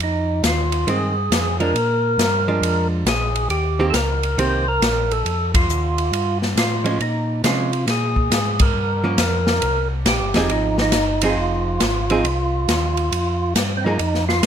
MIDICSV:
0, 0, Header, 1, 5, 480
1, 0, Start_track
1, 0, Time_signature, 4, 2, 24, 8
1, 0, Key_signature, -4, "minor"
1, 0, Tempo, 437318
1, 15871, End_track
2, 0, Start_track
2, 0, Title_t, "Tonewheel organ"
2, 0, Program_c, 0, 16
2, 37, Note_on_c, 0, 63, 71
2, 467, Note_off_c, 0, 63, 0
2, 514, Note_on_c, 0, 65, 83
2, 986, Note_on_c, 0, 68, 92
2, 993, Note_off_c, 0, 65, 0
2, 1725, Note_off_c, 0, 68, 0
2, 1764, Note_on_c, 0, 70, 103
2, 3159, Note_off_c, 0, 70, 0
2, 3385, Note_on_c, 0, 68, 72
2, 3823, Note_off_c, 0, 68, 0
2, 3848, Note_on_c, 0, 67, 82
2, 4245, Note_off_c, 0, 67, 0
2, 4283, Note_on_c, 0, 69, 60
2, 4323, Note_on_c, 0, 70, 83
2, 4332, Note_off_c, 0, 69, 0
2, 4815, Note_on_c, 0, 72, 91
2, 4820, Note_off_c, 0, 70, 0
2, 5135, Note_off_c, 0, 72, 0
2, 5140, Note_on_c, 0, 70, 98
2, 5618, Note_on_c, 0, 69, 97
2, 5625, Note_off_c, 0, 70, 0
2, 6057, Note_off_c, 0, 69, 0
2, 6097, Note_on_c, 0, 65, 80
2, 7006, Note_off_c, 0, 65, 0
2, 7224, Note_on_c, 0, 65, 69
2, 7664, Note_off_c, 0, 65, 0
2, 7702, Note_on_c, 0, 63, 65
2, 8143, Note_off_c, 0, 63, 0
2, 8180, Note_on_c, 0, 65, 71
2, 8622, Note_off_c, 0, 65, 0
2, 8673, Note_on_c, 0, 68, 81
2, 9460, Note_on_c, 0, 70, 87
2, 9478, Note_off_c, 0, 68, 0
2, 10847, Note_off_c, 0, 70, 0
2, 11046, Note_on_c, 0, 67, 89
2, 11538, Note_on_c, 0, 63, 85
2, 11541, Note_off_c, 0, 67, 0
2, 11825, Note_off_c, 0, 63, 0
2, 11871, Note_on_c, 0, 63, 99
2, 12350, Note_off_c, 0, 63, 0
2, 12356, Note_on_c, 0, 65, 87
2, 14858, Note_off_c, 0, 65, 0
2, 15117, Note_on_c, 0, 60, 51
2, 15193, Note_on_c, 0, 63, 80
2, 15207, Note_off_c, 0, 60, 0
2, 15641, Note_off_c, 0, 63, 0
2, 15682, Note_on_c, 0, 65, 102
2, 15871, Note_off_c, 0, 65, 0
2, 15871, End_track
3, 0, Start_track
3, 0, Title_t, "Hollow-body jazz guitar"
3, 0, Program_c, 1, 26
3, 958, Note_on_c, 1, 51, 47
3, 964, Note_on_c, 1, 56, 47
3, 974, Note_on_c, 1, 60, 54
3, 1243, Note_off_c, 1, 51, 0
3, 1246, Note_off_c, 1, 56, 0
3, 1251, Note_off_c, 1, 60, 0
3, 1757, Note_on_c, 1, 53, 59
3, 1764, Note_on_c, 1, 56, 55
3, 1773, Note_on_c, 1, 62, 54
3, 1907, Note_off_c, 1, 53, 0
3, 1911, Note_off_c, 1, 56, 0
3, 1915, Note_off_c, 1, 62, 0
3, 2722, Note_on_c, 1, 53, 57
3, 2725, Note_on_c, 1, 56, 60
3, 2731, Note_on_c, 1, 62, 49
3, 3335, Note_off_c, 1, 53, 0
3, 3336, Note_off_c, 1, 56, 0
3, 3339, Note_off_c, 1, 62, 0
3, 4164, Note_on_c, 1, 51, 62
3, 4169, Note_on_c, 1, 60, 55
3, 4170, Note_on_c, 1, 58, 57
3, 4179, Note_on_c, 1, 67, 72
3, 4312, Note_off_c, 1, 51, 0
3, 4315, Note_off_c, 1, 58, 0
3, 4315, Note_off_c, 1, 60, 0
3, 4320, Note_off_c, 1, 67, 0
3, 4810, Note_on_c, 1, 51, 57
3, 4818, Note_on_c, 1, 58, 53
3, 4819, Note_on_c, 1, 60, 59
3, 4826, Note_on_c, 1, 67, 61
3, 5092, Note_off_c, 1, 51, 0
3, 5096, Note_off_c, 1, 58, 0
3, 5096, Note_off_c, 1, 60, 0
3, 5099, Note_off_c, 1, 67, 0
3, 7512, Note_on_c, 1, 53, 55
3, 7525, Note_on_c, 1, 56, 59
3, 7530, Note_on_c, 1, 61, 56
3, 7668, Note_off_c, 1, 53, 0
3, 7674, Note_off_c, 1, 56, 0
3, 7676, Note_off_c, 1, 61, 0
3, 8173, Note_on_c, 1, 53, 41
3, 8180, Note_on_c, 1, 56, 48
3, 8185, Note_on_c, 1, 61, 47
3, 8454, Note_off_c, 1, 53, 0
3, 8457, Note_off_c, 1, 56, 0
3, 8460, Note_off_c, 1, 61, 0
3, 9919, Note_on_c, 1, 53, 59
3, 9926, Note_on_c, 1, 58, 61
3, 9931, Note_on_c, 1, 61, 63
3, 10070, Note_off_c, 1, 53, 0
3, 10074, Note_off_c, 1, 58, 0
3, 10076, Note_off_c, 1, 61, 0
3, 11374, Note_on_c, 1, 53, 57
3, 11374, Note_on_c, 1, 63, 61
3, 11375, Note_on_c, 1, 60, 56
3, 11385, Note_on_c, 1, 68, 67
3, 11981, Note_off_c, 1, 53, 0
3, 11981, Note_off_c, 1, 60, 0
3, 11981, Note_off_c, 1, 63, 0
3, 11986, Note_off_c, 1, 68, 0
3, 12324, Note_on_c, 1, 53, 55
3, 12327, Note_on_c, 1, 60, 62
3, 12335, Note_on_c, 1, 63, 65
3, 12345, Note_on_c, 1, 68, 61
3, 12935, Note_off_c, 1, 53, 0
3, 12937, Note_off_c, 1, 60, 0
3, 12940, Note_off_c, 1, 63, 0
3, 12946, Note_off_c, 1, 68, 0
3, 13288, Note_on_c, 1, 53, 58
3, 13290, Note_on_c, 1, 60, 60
3, 13299, Note_on_c, 1, 68, 66
3, 13302, Note_on_c, 1, 63, 56
3, 13434, Note_off_c, 1, 53, 0
3, 13435, Note_off_c, 1, 60, 0
3, 13439, Note_off_c, 1, 68, 0
3, 13441, Note_off_c, 1, 63, 0
3, 15214, Note_on_c, 1, 53, 49
3, 15215, Note_on_c, 1, 58, 50
3, 15224, Note_on_c, 1, 63, 60
3, 15227, Note_on_c, 1, 68, 55
3, 15355, Note_off_c, 1, 53, 0
3, 15356, Note_off_c, 1, 58, 0
3, 15360, Note_off_c, 1, 63, 0
3, 15362, Note_off_c, 1, 68, 0
3, 15871, End_track
4, 0, Start_track
4, 0, Title_t, "Tonewheel organ"
4, 0, Program_c, 2, 16
4, 0, Note_on_c, 2, 41, 70
4, 459, Note_off_c, 2, 41, 0
4, 470, Note_on_c, 2, 39, 86
4, 942, Note_off_c, 2, 39, 0
4, 957, Note_on_c, 2, 43, 75
4, 1426, Note_off_c, 2, 43, 0
4, 1435, Note_on_c, 2, 41, 68
4, 1905, Note_off_c, 2, 41, 0
4, 1907, Note_on_c, 2, 46, 84
4, 2382, Note_off_c, 2, 46, 0
4, 2389, Note_on_c, 2, 43, 79
4, 2863, Note_off_c, 2, 43, 0
4, 2868, Note_on_c, 2, 41, 77
4, 3343, Note_off_c, 2, 41, 0
4, 3350, Note_on_c, 2, 34, 68
4, 3824, Note_off_c, 2, 34, 0
4, 3834, Note_on_c, 2, 39, 76
4, 4306, Note_off_c, 2, 39, 0
4, 4319, Note_on_c, 2, 37, 90
4, 4789, Note_off_c, 2, 37, 0
4, 4799, Note_on_c, 2, 36, 70
4, 5269, Note_off_c, 2, 36, 0
4, 5276, Note_on_c, 2, 34, 71
4, 5748, Note_off_c, 2, 34, 0
4, 5762, Note_on_c, 2, 41, 74
4, 6231, Note_off_c, 2, 41, 0
4, 6238, Note_on_c, 2, 39, 88
4, 6710, Note_off_c, 2, 39, 0
4, 6716, Note_on_c, 2, 43, 71
4, 7188, Note_off_c, 2, 43, 0
4, 7198, Note_on_c, 2, 45, 66
4, 7669, Note_off_c, 2, 45, 0
4, 7682, Note_on_c, 2, 46, 82
4, 8151, Note_off_c, 2, 46, 0
4, 8160, Note_on_c, 2, 48, 78
4, 8630, Note_off_c, 2, 48, 0
4, 8637, Note_on_c, 2, 46, 78
4, 9109, Note_off_c, 2, 46, 0
4, 9115, Note_on_c, 2, 44, 71
4, 9588, Note_off_c, 2, 44, 0
4, 9597, Note_on_c, 2, 43, 78
4, 10068, Note_off_c, 2, 43, 0
4, 10072, Note_on_c, 2, 41, 83
4, 10546, Note_off_c, 2, 41, 0
4, 10566, Note_on_c, 2, 36, 72
4, 11029, Note_on_c, 2, 34, 79
4, 11033, Note_off_c, 2, 36, 0
4, 11194, Note_off_c, 2, 34, 0
4, 11196, Note_on_c, 2, 31, 54
4, 11362, Note_off_c, 2, 31, 0
4, 11363, Note_on_c, 2, 28, 64
4, 11514, Note_off_c, 2, 28, 0
4, 11516, Note_on_c, 2, 32, 77
4, 11987, Note_off_c, 2, 32, 0
4, 11996, Note_on_c, 2, 31, 88
4, 12467, Note_off_c, 2, 31, 0
4, 12472, Note_on_c, 2, 29, 78
4, 12945, Note_off_c, 2, 29, 0
4, 12956, Note_on_c, 2, 32, 81
4, 13426, Note_off_c, 2, 32, 0
4, 13435, Note_on_c, 2, 36, 78
4, 13906, Note_off_c, 2, 36, 0
4, 13914, Note_on_c, 2, 39, 77
4, 14385, Note_off_c, 2, 39, 0
4, 14396, Note_on_c, 2, 41, 72
4, 14865, Note_off_c, 2, 41, 0
4, 14871, Note_on_c, 2, 43, 64
4, 15342, Note_off_c, 2, 43, 0
4, 15359, Note_on_c, 2, 41, 82
4, 15826, Note_off_c, 2, 41, 0
4, 15834, Note_on_c, 2, 44, 82
4, 15871, Note_off_c, 2, 44, 0
4, 15871, End_track
5, 0, Start_track
5, 0, Title_t, "Drums"
5, 2, Note_on_c, 9, 51, 44
5, 112, Note_off_c, 9, 51, 0
5, 479, Note_on_c, 9, 44, 54
5, 479, Note_on_c, 9, 51, 56
5, 480, Note_on_c, 9, 38, 60
5, 588, Note_off_c, 9, 44, 0
5, 588, Note_off_c, 9, 51, 0
5, 589, Note_off_c, 9, 38, 0
5, 792, Note_on_c, 9, 51, 43
5, 902, Note_off_c, 9, 51, 0
5, 961, Note_on_c, 9, 51, 53
5, 1071, Note_off_c, 9, 51, 0
5, 1447, Note_on_c, 9, 44, 50
5, 1447, Note_on_c, 9, 51, 64
5, 1448, Note_on_c, 9, 38, 62
5, 1557, Note_off_c, 9, 44, 0
5, 1557, Note_off_c, 9, 51, 0
5, 1558, Note_off_c, 9, 38, 0
5, 1757, Note_on_c, 9, 51, 36
5, 1867, Note_off_c, 9, 51, 0
5, 1927, Note_on_c, 9, 51, 46
5, 2037, Note_off_c, 9, 51, 0
5, 2405, Note_on_c, 9, 44, 47
5, 2405, Note_on_c, 9, 51, 52
5, 2407, Note_on_c, 9, 38, 54
5, 2515, Note_off_c, 9, 44, 0
5, 2515, Note_off_c, 9, 51, 0
5, 2516, Note_off_c, 9, 38, 0
5, 2889, Note_on_c, 9, 51, 62
5, 2999, Note_off_c, 9, 51, 0
5, 3364, Note_on_c, 9, 44, 46
5, 3364, Note_on_c, 9, 51, 58
5, 3365, Note_on_c, 9, 38, 60
5, 3474, Note_off_c, 9, 44, 0
5, 3474, Note_off_c, 9, 51, 0
5, 3475, Note_off_c, 9, 38, 0
5, 3682, Note_on_c, 9, 51, 42
5, 3792, Note_off_c, 9, 51, 0
5, 3841, Note_on_c, 9, 51, 44
5, 3951, Note_off_c, 9, 51, 0
5, 4321, Note_on_c, 9, 44, 53
5, 4321, Note_on_c, 9, 51, 55
5, 4322, Note_on_c, 9, 38, 49
5, 4431, Note_off_c, 9, 44, 0
5, 4431, Note_off_c, 9, 51, 0
5, 4432, Note_off_c, 9, 38, 0
5, 4645, Note_on_c, 9, 51, 45
5, 4755, Note_off_c, 9, 51, 0
5, 4814, Note_on_c, 9, 51, 59
5, 4923, Note_off_c, 9, 51, 0
5, 5293, Note_on_c, 9, 44, 46
5, 5293, Note_on_c, 9, 51, 56
5, 5294, Note_on_c, 9, 38, 57
5, 5402, Note_off_c, 9, 44, 0
5, 5402, Note_off_c, 9, 51, 0
5, 5404, Note_off_c, 9, 38, 0
5, 5612, Note_on_c, 9, 51, 39
5, 5722, Note_off_c, 9, 51, 0
5, 5772, Note_on_c, 9, 51, 49
5, 5882, Note_off_c, 9, 51, 0
5, 6086, Note_on_c, 9, 36, 64
5, 6086, Note_on_c, 9, 51, 71
5, 6195, Note_off_c, 9, 36, 0
5, 6196, Note_off_c, 9, 51, 0
5, 6251, Note_on_c, 9, 44, 49
5, 6361, Note_off_c, 9, 44, 0
5, 6564, Note_on_c, 9, 51, 44
5, 6674, Note_off_c, 9, 51, 0
5, 6732, Note_on_c, 9, 51, 56
5, 6841, Note_off_c, 9, 51, 0
5, 7049, Note_on_c, 9, 38, 39
5, 7159, Note_off_c, 9, 38, 0
5, 7215, Note_on_c, 9, 44, 46
5, 7215, Note_on_c, 9, 51, 60
5, 7216, Note_on_c, 9, 38, 56
5, 7325, Note_off_c, 9, 44, 0
5, 7325, Note_off_c, 9, 51, 0
5, 7326, Note_off_c, 9, 38, 0
5, 7524, Note_on_c, 9, 51, 37
5, 7633, Note_off_c, 9, 51, 0
5, 7688, Note_on_c, 9, 51, 42
5, 7798, Note_off_c, 9, 51, 0
5, 8165, Note_on_c, 9, 44, 51
5, 8165, Note_on_c, 9, 51, 54
5, 8166, Note_on_c, 9, 38, 55
5, 8275, Note_off_c, 9, 44, 0
5, 8275, Note_off_c, 9, 51, 0
5, 8276, Note_off_c, 9, 38, 0
5, 8484, Note_on_c, 9, 51, 40
5, 8593, Note_off_c, 9, 51, 0
5, 8643, Note_on_c, 9, 51, 53
5, 8644, Note_on_c, 9, 38, 35
5, 8753, Note_off_c, 9, 51, 0
5, 8754, Note_off_c, 9, 38, 0
5, 8959, Note_on_c, 9, 36, 46
5, 9069, Note_off_c, 9, 36, 0
5, 9126, Note_on_c, 9, 44, 47
5, 9126, Note_on_c, 9, 51, 60
5, 9128, Note_on_c, 9, 38, 59
5, 9236, Note_off_c, 9, 44, 0
5, 9236, Note_off_c, 9, 51, 0
5, 9237, Note_off_c, 9, 38, 0
5, 9432, Note_on_c, 9, 51, 70
5, 9439, Note_on_c, 9, 36, 69
5, 9542, Note_off_c, 9, 51, 0
5, 9549, Note_off_c, 9, 36, 0
5, 10075, Note_on_c, 9, 44, 45
5, 10075, Note_on_c, 9, 51, 58
5, 10076, Note_on_c, 9, 38, 59
5, 10184, Note_off_c, 9, 44, 0
5, 10184, Note_off_c, 9, 51, 0
5, 10186, Note_off_c, 9, 38, 0
5, 10391, Note_on_c, 9, 38, 54
5, 10500, Note_off_c, 9, 38, 0
5, 10556, Note_on_c, 9, 51, 54
5, 10665, Note_off_c, 9, 51, 0
5, 11038, Note_on_c, 9, 44, 44
5, 11038, Note_on_c, 9, 51, 62
5, 11039, Note_on_c, 9, 38, 60
5, 11148, Note_off_c, 9, 44, 0
5, 11148, Note_off_c, 9, 51, 0
5, 11149, Note_off_c, 9, 38, 0
5, 11349, Note_on_c, 9, 51, 38
5, 11350, Note_on_c, 9, 38, 49
5, 11459, Note_off_c, 9, 51, 0
5, 11460, Note_off_c, 9, 38, 0
5, 11519, Note_on_c, 9, 51, 43
5, 11628, Note_off_c, 9, 51, 0
5, 11830, Note_on_c, 9, 38, 49
5, 11939, Note_off_c, 9, 38, 0
5, 11984, Note_on_c, 9, 44, 47
5, 11984, Note_on_c, 9, 51, 56
5, 11985, Note_on_c, 9, 38, 52
5, 12094, Note_off_c, 9, 44, 0
5, 12094, Note_off_c, 9, 51, 0
5, 12095, Note_off_c, 9, 38, 0
5, 12308, Note_on_c, 9, 51, 67
5, 12418, Note_off_c, 9, 51, 0
5, 12955, Note_on_c, 9, 44, 53
5, 12955, Note_on_c, 9, 51, 58
5, 12956, Note_on_c, 9, 38, 55
5, 13065, Note_off_c, 9, 44, 0
5, 13065, Note_off_c, 9, 51, 0
5, 13066, Note_off_c, 9, 38, 0
5, 13278, Note_on_c, 9, 51, 45
5, 13388, Note_off_c, 9, 51, 0
5, 13442, Note_on_c, 9, 51, 47
5, 13552, Note_off_c, 9, 51, 0
5, 13923, Note_on_c, 9, 44, 46
5, 13923, Note_on_c, 9, 51, 61
5, 13924, Note_on_c, 9, 38, 54
5, 14033, Note_off_c, 9, 44, 0
5, 14033, Note_off_c, 9, 51, 0
5, 14034, Note_off_c, 9, 38, 0
5, 14238, Note_on_c, 9, 51, 39
5, 14347, Note_off_c, 9, 51, 0
5, 14404, Note_on_c, 9, 51, 56
5, 14514, Note_off_c, 9, 51, 0
5, 14878, Note_on_c, 9, 44, 52
5, 14878, Note_on_c, 9, 51, 61
5, 14879, Note_on_c, 9, 38, 55
5, 14988, Note_off_c, 9, 44, 0
5, 14988, Note_off_c, 9, 51, 0
5, 14989, Note_off_c, 9, 38, 0
5, 15357, Note_on_c, 9, 51, 51
5, 15467, Note_off_c, 9, 51, 0
5, 15524, Note_on_c, 9, 38, 27
5, 15634, Note_off_c, 9, 38, 0
5, 15682, Note_on_c, 9, 38, 40
5, 15792, Note_off_c, 9, 38, 0
5, 15838, Note_on_c, 9, 44, 45
5, 15838, Note_on_c, 9, 51, 58
5, 15871, Note_off_c, 9, 44, 0
5, 15871, Note_off_c, 9, 51, 0
5, 15871, End_track
0, 0, End_of_file